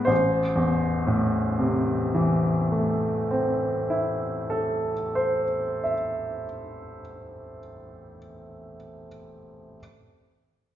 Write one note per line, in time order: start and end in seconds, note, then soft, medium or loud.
0.00 0.12 G#3 soft
0.00 0.13 A3 soft
0.00 0.13 B3 soft
0.05 4.94 A1 soft
0.05 4.92 C5 soft
0.56 5.42 E2 soft
1.07 5.94 A2 soft
1.59 6.46 C3 soft
2.15 7.01 E3 soft
2.72 7.59 A3 soft
3.31 8.18 C4 soft
3.90 8.77 E4 soft
4.50 9.05 A4 soft
5.15 9.06 C5 soft
5.84 9.06 E5 soft